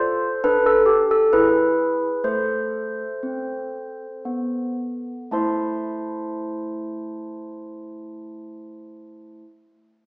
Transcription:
Already playing: F4 A4 C5
0.44 D4 A4 B4
0.66 A4
0.86 G4
1.11 A4
1.33 E4 G#4 B4
2.24 A3 A4 C5
3.23 C4
4.25 B3
5.31 A3 E4 C5 E5 A5 C6

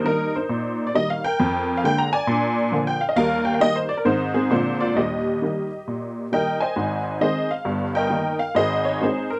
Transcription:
0.04 D#3 G3 A#3 D#4 A#4
0.36 D#4 C5
0.49 A#2
0.87 D5
0.95 D#3 G3 A#3 D#5
1.10 F5
1.24 A#4 G5
1.40 F2
1.77 F5
1.84 D3 G#3 A#3 G5
1.98 A#5
2.13 D5 G#5
2.27 A#2 D4
2.72 D3 F3 A#3
2.87 G5
3.01 F5
3.09 D#5
3.16 D#2 G3 A#4 F5
3.45 G5
3.54 F5
3.61 D#3 G3 A#3 D#5
3.76 C5
3.89 D5
3.97 A#4
4.05 G#2 D#3 G#3 C4 D#4 C5
4.34 C4 G#4
4.51 A#2 D3 G#3 C4 D4 F4 C5
4.81 F4 D5
4.96 D#2 G3 G4 D#5
5.42 D#3 G3 A#3
5.88 A#2
6.32 D#3 G3 A#3 A#4 D#5 G5
6.60 C5 D#5 G#5
6.76 G#1 G#2
7.21 D#3 G#3 C4 G#4 C5 D#5
7.51 F5
7.65 G1 G2
7.95 A#4 D#5 G5
8.10 D#3 A#3 D#4
8.39 F5
8.55 G#1 G#2 G#4 C5 D#5
8.85 C#5
9.01 G#3 C4 D#4 G#4 C5
9.30 A#4

